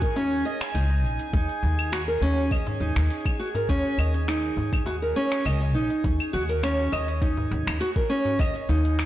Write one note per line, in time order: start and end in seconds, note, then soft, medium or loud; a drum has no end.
0.00 0.41 D#2 medium
0.00 9.05 G#4 medium
0.00 0.15 A#4 medium
0.00 9.05 G#5 medium
0.00 kick loud
0.00 open hi-hat soft
0.00 shaker soft
0.16 0.44 C#4 medium
0.16 open hi-hat medium
0.16 darbuka tek medium
0.16 shaker soft
0.45 0.60 D#5 medium
0.45 shaker medium
0.61 finger snap medium
0.61 open hi-hat soft
0.61 shaker soft
0.74 1.04 C#2 medium
0.74 1.32 D#4 medium
0.74 open hi-hat medium
0.74 shaker soft
0.90 darbuka ka soft
0.90 darbuka tek soft
1.04 1.16 A#1 medium
1.04 shaker medium
1.19 open hi-hat soft
1.19 shaker soft
1.33 1.46 D#2 medium
1.33 1.91 D#4 medium
1.33 kick loud
1.33 open hi-hat soft
1.33 shaker soft
1.49 open hi-hat soft
1.63 2.18 D#2 medium
1.63 shaker medium
1.79 open hi-hat soft
1.79 claves medium
1.79 shaker soft
1.92 2.01 F#4 medium
1.92 finger snap medium
1.92 open hi-hat medium
1.92 shaker soft
2.08 2.21 A#4 medium
2.21 2.76 D#2 medium
2.21 2.50 C#4 medium
2.21 darbuka ka medium
2.21 shaker medium
2.38 open hi-hat soft
2.38 shaker soft
2.51 2.66 D#5 medium
2.51 kick loud
2.51 open hi-hat medium
2.51 claves medium
2.51 shaker soft
2.67 darbuka tek medium
2.67 darbuka dum medium
2.80 2.93 D#2 medium
2.80 3.38 D#4 medium
2.80 shaker medium
2.96 3.08 D#2 medium
2.96 finger snap medium
2.96 open hi-hat soft
2.96 shaker soft
3.11 open hi-hat medium
3.11 shaker soft
3.26 kick loud
3.26 claves medium
3.39 3.48 F#4 medium
3.39 shaker medium
3.55 3.68 A#4 medium
3.55 open hi-hat soft
3.55 darbuka ka medium
3.55 darbuka dum medium
3.55 shaker soft
3.69 3.82 D#2 medium
3.69 3.97 C#4 loud
3.69 kick loud
3.69 open hi-hat medium
3.69 shaker soft
3.85 open hi-hat soft
3.98 4.53 D#2 medium
3.98 4.13 D#5 medium
3.98 claves medium
3.98 shaker medium
4.14 open hi-hat soft
4.14 shaker soft
4.28 4.85 D#4 medium
4.28 finger snap medium
4.28 open hi-hat medium
4.28 shaker soft
4.56 5.11 D#2 medium
4.56 darbuka ka medium
4.56 darbuka dum medium
4.56 shaker medium
4.73 kick loud
4.73 open hi-hat soft
4.73 claves medium
4.73 shaker soft
4.86 4.95 F#4 medium
4.86 open hi-hat medium
4.86 darbuka tek medium
4.86 shaker soft
5.02 5.15 A#4 medium
5.16 5.44 C#4 loud
5.16 shaker medium
5.32 finger snap medium
5.32 open hi-hat soft
5.32 shaker soft
5.45 5.74 C#2 medium
5.45 5.60 D#5 medium
5.45 open hi-hat medium
5.45 claves medium
5.45 shaker soft
5.60 darbuka ka soft
5.74 5.87 A#1 medium
5.74 6.32 D#4 medium
5.74 shaker medium
5.90 open hi-hat soft
5.90 shaker soft
6.04 6.17 D#2 medium
6.04 kick loud
6.04 open hi-hat medium
6.04 shaker soft
6.20 open hi-hat soft
6.20 claves medium
6.33 6.88 D#2 medium
6.33 6.42 F#4 loud
6.33 shaker medium
6.49 6.62 A#4 medium
6.49 open hi-hat soft
6.49 shaker soft
6.63 6.91 C#4 loud
6.63 finger snap medium
6.63 open hi-hat medium
6.63 shaker soft
6.92 7.47 D#2 medium
6.92 7.07 D#5 medium
6.92 darbuka ka medium
6.92 claves medium
6.92 shaker medium
7.08 open hi-hat soft
7.08 shaker soft
7.22 7.79 D#4 medium
7.22 kick loud
7.22 open hi-hat medium
7.22 shaker soft
7.37 darbuka tek medium
7.37 darbuka dum medium
7.51 7.64 D#2 loud
7.51 shaker medium
7.67 7.78 D#2 medium
7.67 finger snap medium
7.67 open hi-hat soft
7.67 claves medium
7.67 shaker soft
7.81 7.89 F#4 loud
7.81 open hi-hat medium
7.81 shaker soft
7.96 8.09 A#4 medium
7.96 kick loud
8.10 8.38 C#4 loud
8.10 shaker medium
8.25 open hi-hat soft
8.25 darbuka ka medium
8.25 darbuka dum medium
8.25 shaker soft
8.39 8.52 D#2 medium
8.39 8.54 D#5 medium
8.39 kick loud
8.39 open hi-hat medium
8.39 claves medium
8.39 shaker soft
8.56 open hi-hat soft
8.69 9.05 D#2 medium
8.69 9.05 D#4 medium
8.69 shaker medium
8.85 open hi-hat soft
8.85 shaker soft
8.99 finger snap medium
8.99 open hi-hat medium
8.99 shaker soft